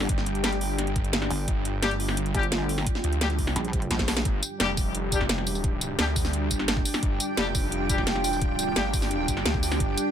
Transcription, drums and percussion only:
0.00 snare
0.09 kick, closed hi-hat
0.18 snare
0.26 closed hi-hat
0.35 closed hi-hat
0.44 snare, closed hi-hat
0.52 closed hi-hat
0.61 open hi-hat
0.78 snare, closed hi-hat
0.87 closed hi-hat
0.96 kick, closed hi-hat
1.04 closed hi-hat
1.13 snare, closed hi-hat
1.22 snare
1.30 open hi-hat
1.48 kick, closed hi-hat
1.65 closed hi-hat
1.83 snare, closed hi-hat
1.91 closed hi-hat
2.00 open hi-hat
2.08 snare
2.17 closed hi-hat
2.26 closed hi-hat
2.35 kick, closed hi-hat
2.43 closed hi-hat
2.52 snare, closed hi-hat
2.69 open hi-hat
2.78 snare
2.87 kick, closed hi-hat
2.95 snare
3.04 closed hi-hat
3.13 closed hi-hat
3.21 snare, closed hi-hat
3.30 closed hi-hat
3.39 kick, open hi-hat
3.47 snare
3.56 snare, closed hi-hat
3.65 closed hi-hat
3.73 kick, closed hi-hat
3.82 closed hi-hat
3.91 snare, closed hi-hat
3.99 kick, snare
4.08 snare, open hi-hat
4.17 snare
4.25 kick, closed hi-hat
4.43 closed hi-hat, tambourine
4.60 snare, closed hi-hat
4.77 kick, open hi-hat, tambourine
4.95 closed hi-hat
5.12 kick, closed hi-hat, tambourine
5.21 kick, snare
5.29 snare, closed hi-hat, tambourine
5.38 snare
5.47 open hi-hat, tambourine
5.55 tambourine
5.64 kick, closed hi-hat
5.81 closed hi-hat, tambourine
5.99 snare, closed hi-hat
6.16 kick, open hi-hat, tambourine
6.25 snare, tambourine
6.33 closed hi-hat
6.51 kick, closed hi-hat, tambourine
6.59 snare
6.68 snare, closed hi-hat, tambourine
6.77 kick
6.85 open hi-hat, tambourine
6.94 snare, tambourine
7.03 kick, closed hi-hat
7.20 closed hi-hat, tambourine
7.37 snare, closed hi-hat
7.55 kick, open hi-hat, tambourine
7.72 closed hi-hat
7.89 kick, closed hi-hat, tambourine
7.98 kick, snare
8.07 snare, closed hi-hat, tambourine
8.15 snare
8.24 open hi-hat, tambourine
8.33 tambourine
8.41 kick, closed hi-hat
8.59 closed hi-hat, tambourine
8.76 snare, closed hi-hat
8.94 kick, open hi-hat, tambourine
9.02 snare, tambourine
9.11 closed hi-hat
9.28 kick, closed hi-hat, tambourine
9.37 snare
9.46 snare, closed hi-hat, tambourine
9.54 kick
9.63 open hi-hat, tambourine
9.72 snare, tambourine
9.80 kick, closed hi-hat
9.98 closed hi-hat, tambourine

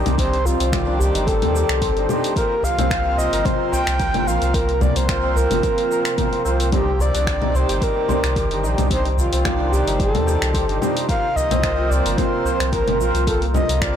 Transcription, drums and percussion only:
0.06 open hi-hat, low conga, cabasa
0.18 kick, open hi-hat, cabasa
0.33 open hi-hat
0.45 udu, cabasa
0.60 open hi-hat, cabasa
0.73 finger snap, kick, open hi-hat, low conga, cabasa
1.00 udu, cabasa
1.15 open hi-hat, cabasa
1.27 kick, open hi-hat, cabasa
1.42 open hi-hat, low conga
1.56 cabasa
1.69 finger snap, open hi-hat, cabasa
1.82 kick, open hi-hat, cabasa
1.97 open hi-hat
2.09 low conga, cabasa
2.24 open hi-hat, cabasa
2.36 kick, open hi-hat, cabasa
2.63 udu, cabasa
2.79 open hi-hat, low conga, cabasa
2.91 finger snap, kick, open hi-hat, cabasa
3.17 udu, cabasa
3.33 open hi-hat, cabasa
3.45 kick, open hi-hat, low conga, cabasa
3.72 udu, cabasa
3.87 finger snap, open hi-hat, cabasa
4.00 kick, open hi-hat, cabasa
4.14 open hi-hat, low conga
4.28 cabasa
4.42 open hi-hat, cabasa
4.54 kick, open hi-hat, cabasa
4.69 open hi-hat
4.81 low conga, udu, cabasa
4.96 open hi-hat, cabasa
5.09 finger snap, kick, open hi-hat, cabasa
5.36 udu, cabasa
5.51 open hi-hat, low conga, cabasa
5.63 kick, open hi-hat, cabasa
5.78 open hi-hat
5.91 cabasa
6.05 finger snap, open hi-hat, cabasa
6.18 kick, open hi-hat, low conga, cabasa
6.33 open hi-hat
6.46 cabasa
6.60 open hi-hat, cabasa
6.72 kick, open hi-hat, low conga, cabasa
6.99 udu, cabasa
7.15 open hi-hat, cabasa
7.27 finger snap, kick, open hi-hat, cabasa
7.42 low conga
7.55 udu, cabasa
7.69 open hi-hat, cabasa
7.82 kick, open hi-hat, cabasa
8.09 udu, low conga, cabasa
8.24 finger snap, open hi-hat, cabasa
8.36 kick, open hi-hat, cabasa
8.51 open hi-hat
8.64 cabasa
8.78 open hi-hat, low conga, cabasa
8.91 kick, open hi-hat, cabasa
9.05 open hi-hat
9.18 udu, cabasa
9.33 open hi-hat, cabasa
9.45 finger snap, kick, open hi-hat, low conga, cabasa
9.72 udu, cabasa
9.88 open hi-hat, cabasa
10.00 kick, open hi-hat, cabasa
10.15 open hi-hat, low conga
10.28 cabasa
10.42 finger snap, open hi-hat, cabasa
10.54 kick, open hi-hat, cabasa
10.69 open hi-hat
10.82 low conga, cabasa
10.97 open hi-hat, cabasa
11.09 kick, open hi-hat, cabasa
11.36 udu, cabasa
11.51 open hi-hat, low conga, cabasa
11.63 finger snap, kick, open hi-hat, cabasa
11.91 udu, cabasa
12.06 open hi-hat, cabasa
12.18 kick, open hi-hat, low conga, cabasa
12.45 udu, cabasa
12.60 finger snap, open hi-hat, cabasa
12.72 kick, open hi-hat, cabasa
12.88 open hi-hat, low conga
13.01 cabasa
13.15 open hi-hat, cabasa
13.27 kick, open hi-hat, cabasa
13.42 open hi-hat
13.54 udu, low conga, cabasa
13.69 open hi-hat, cabasa
13.82 finger snap, kick, open hi-hat, cabasa

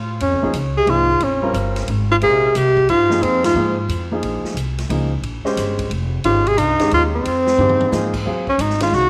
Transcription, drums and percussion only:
0.20 ride
0.53 hi-hat pedal, ride
0.87 ride
1.20 ride
1.54 hi-hat pedal, ride
1.76 snare, ride
1.88 ride
2.21 ride
2.55 hi-hat pedal, ride
2.77 kick
2.89 ride
3.11 snare
3.23 ride
3.44 snare, ride
3.89 hi-hat pedal, ride
4.23 ride
4.45 snare
4.57 hi-hat pedal, ride
4.78 snare, ride
4.90 ride
5.23 ride
5.45 snare
5.57 snare, hi-hat pedal, ride
5.79 kick, ride
5.91 ride
6.24 ride
6.47 ride
6.58 hi-hat pedal, ride
6.79 snare, ride
6.91 ride
7.25 ride
7.47 snare
7.58 high tom
7.69 high tom
7.81 high tom
7.92 snare, hi-hat pedal
8.14 kick, crash
8.47 kick
8.59 hi-hat pedal, ride
8.70 snare
8.80 snare, ride
8.92 snare

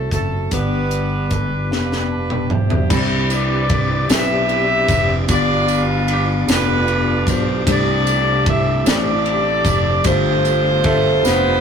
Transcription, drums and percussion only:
0.11 kick, closed hi-hat
0.51 kick, closed hi-hat
0.91 closed hi-hat
1.31 kick, closed hi-hat
1.72 snare
1.92 snare
2.30 mid tom
2.50 mid tom
2.70 floor tom
2.90 kick, crash, tambourine
3.30 ride bell, tambourine
3.69 kick, ride bell
4.10 snare, ride bell, tambourine
4.49 ride bell
4.88 kick, ride bell, tambourine
5.28 kick, ride bell, tambourine
5.68 ride bell, tambourine
6.08 ride bell
6.48 snare, ride bell, tambourine
6.88 ride bell
7.27 kick, ride bell, tambourine
7.67 kick, ride bell, tambourine
8.07 ride bell, tambourine
8.46 kick, ride bell
8.86 snare, ride bell, tambourine
9.26 ride bell
9.65 kick, ride bell, tambourine
10.04 kick, ride bell, tambourine
10.45 ride bell, tambourine
10.84 kick, ride bell
11.25 snare, tambourine

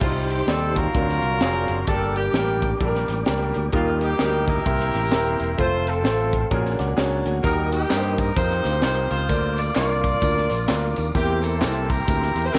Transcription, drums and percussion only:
0.01 kick, crash
0.30 closed hi-hat
0.48 snare, closed hi-hat
0.76 kick, closed hi-hat
0.95 kick, closed hi-hat
1.09 snare
1.22 closed hi-hat
1.41 snare, closed hi-hat
1.68 closed hi-hat
1.87 kick, closed hi-hat
2.16 closed hi-hat
2.34 snare, closed hi-hat
2.62 kick, closed hi-hat
2.81 kick, closed hi-hat
2.95 snare
3.08 snare, closed hi-hat
3.26 snare, closed hi-hat
3.54 closed hi-hat
3.72 kick, closed hi-hat
4.01 closed hi-hat
4.19 snare, closed hi-hat
4.48 kick, closed hi-hat
4.66 kick, closed hi-hat
4.80 snare
4.94 snare, closed hi-hat
5.12 snare, closed hi-hat
5.40 closed hi-hat
5.59 kick, closed hi-hat
5.87 closed hi-hat
6.05 snare, closed hi-hat
6.33 kick, closed hi-hat
6.51 kick, closed hi-hat
6.66 snare
6.79 snare, closed hi-hat
6.97 snare, closed hi-hat
7.26 closed hi-hat
7.44 kick, closed hi-hat, tambourine
7.72 closed hi-hat, tambourine
7.90 snare, clap, closed hi-hat, tambourine
8.18 kick, closed hi-hat, tambourine
8.37 kick, closed hi-hat, tambourine
8.51 snare
8.64 snare, closed hi-hat, tambourine
8.82 snare, clap, closed hi-hat, tambourine
9.10 closed hi-hat, tambourine
9.29 kick, closed hi-hat, tambourine
9.56 closed hi-hat, tambourine
9.75 snare, clap, closed hi-hat, tambourine
10.04 kick, closed hi-hat, tambourine
10.21 kick, closed hi-hat, tambourine
10.37 snare
10.50 snare, closed hi-hat, tambourine
10.68 snare, clap, closed hi-hat, tambourine
10.96 closed hi-hat, tambourine
11.14 kick, closed hi-hat, tambourine
11.43 closed hi-hat, tambourine
11.61 snare, clap, closed hi-hat, tambourine
11.90 kick, closed hi-hat, tambourine
12.07 kick, closed hi-hat, tambourine
12.22 snare
12.36 closed hi-hat, tambourine
12.55 snare, clap, closed hi-hat, tambourine

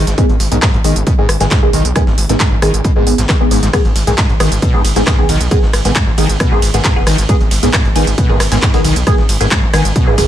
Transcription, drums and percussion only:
0.07 snare, closed hi-hat
0.18 kick, closed hi-hat
0.29 closed hi-hat
0.40 snare, closed hi-hat, open hi-hat
0.52 closed hi-hat
0.62 kick, cross-stick, snare, clap, closed hi-hat
0.74 closed hi-hat
0.84 closed hi-hat, open hi-hat
0.96 closed hi-hat
1.07 kick, closed hi-hat
1.29 cross-stick, closed hi-hat, open hi-hat
1.40 snare, closed hi-hat
1.51 kick, snare, clap, closed hi-hat
1.73 closed hi-hat, open hi-hat
1.85 closed hi-hat
1.96 kick, cross-stick, closed hi-hat
2.07 snare
2.18 closed hi-hat, open hi-hat
2.29 snare, closed hi-hat
2.40 kick, snare, clap, closed hi-hat
2.62 cross-stick, closed hi-hat, open hi-hat
2.74 closed hi-hat
2.84 kick, closed hi-hat
3.07 closed hi-hat, open hi-hat
3.18 snare, closed hi-hat
3.29 kick, cross-stick, snare, clap, closed hi-hat
3.51 open hi-hat
3.63 snare, closed hi-hat
3.73 kick, cross-stick, closed hi-hat, ride
3.85 closed hi-hat
3.96 snare, closed hi-hat, open hi-hat, ride
4.07 closed hi-hat
4.18 kick, snare, clap, closed hi-hat, ride
4.29 closed hi-hat
4.40 cross-stick, closed hi-hat, open hi-hat, ride
4.52 closed hi-hat
4.62 kick, closed hi-hat, ride
4.84 closed hi-hat, open hi-hat, ride
4.96 snare, closed hi-hat
5.07 kick, cross-stick, snare, clap, closed hi-hat, ride
5.29 closed hi-hat, open hi-hat, ride
5.41 closed hi-hat
5.51 kick, closed hi-hat, ride
5.63 snare
5.73 cross-stick, closed hi-hat, open hi-hat, ride
5.85 snare, closed hi-hat
5.96 kick, snare, clap, closed hi-hat, ride
6.18 closed hi-hat, open hi-hat, ride
6.29 closed hi-hat
6.40 kick, cross-stick, closed hi-hat, ride
6.62 closed hi-hat, open hi-hat, ride
6.74 snare, closed hi-hat
6.85 kick, snare, clap, closed hi-hat, ride
7.07 cross-stick, open hi-hat, ride
7.18 snare, closed hi-hat
7.29 kick, closed hi-hat, ride
7.41 closed hi-hat
7.51 snare, closed hi-hat, open hi-hat, ride
7.63 closed hi-hat
7.73 kick, cross-stick, snare, clap, closed hi-hat, ride
7.85 closed hi-hat
7.96 closed hi-hat, open hi-hat, ride
8.07 closed hi-hat
8.18 kick, closed hi-hat, ride
8.40 cross-stick, snare, closed hi-hat, open hi-hat, ride
8.52 snare, closed hi-hat
8.62 kick, snare, clap, closed hi-hat, ride
8.74 snare, closed hi-hat
8.85 closed hi-hat, open hi-hat, ride
8.96 closed hi-hat
9.07 kick, cross-stick, closed hi-hat, ride
9.18 snare
9.29 closed hi-hat, open hi-hat, ride
9.41 snare, closed hi-hat
9.51 kick, snare, clap, closed hi-hat, ride
9.73 cross-stick, closed hi-hat, open hi-hat, ride
9.85 closed hi-hat
9.96 kick, closed hi-hat, ride
10.18 kick, closed hi-hat, open hi-hat, ride

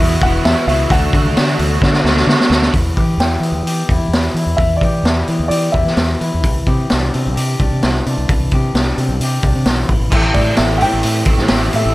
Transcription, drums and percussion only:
0.22 kick, open hi-hat
0.45 snare, open hi-hat
0.69 open hi-hat
0.90 kick, open hi-hat
1.13 kick, open hi-hat
1.37 snare, open hi-hat
1.59 open hi-hat
1.82 kick, snare
1.93 snare
2.05 snare
2.17 snare
2.29 snare
2.40 snare
2.51 snare
2.62 snare
2.74 kick, open hi-hat
2.97 kick, open hi-hat
3.20 snare, open hi-hat
3.43 open hi-hat
3.67 open hi-hat
3.89 kick, open hi-hat
4.13 snare, open hi-hat
4.36 open hi-hat
4.58 kick, open hi-hat
4.81 kick, open hi-hat
5.05 snare, open hi-hat
5.28 open hi-hat
5.51 open hi-hat
5.74 kick, open hi-hat
5.87 snare
5.97 snare, open hi-hat
6.21 open hi-hat
6.44 kick, open hi-hat
6.67 kick, open hi-hat
6.90 snare, open hi-hat
7.14 open hi-hat
7.37 open hi-hat
7.59 kick, open hi-hat
7.83 snare, open hi-hat
8.06 open hi-hat
8.29 kick, open hi-hat
8.51 kick, open hi-hat
8.75 snare, open hi-hat
8.98 open hi-hat
9.21 open hi-hat
9.42 kick, open hi-hat
9.65 snare, open hi-hat
9.89 kick, open hi-hat
10.12 kick, crash
10.34 kick, open hi-hat
10.57 snare, open hi-hat
10.81 open hi-hat
11.03 open hi-hat
11.25 kick, open hi-hat
11.38 snare
11.48 snare, open hi-hat
11.73 open hi-hat

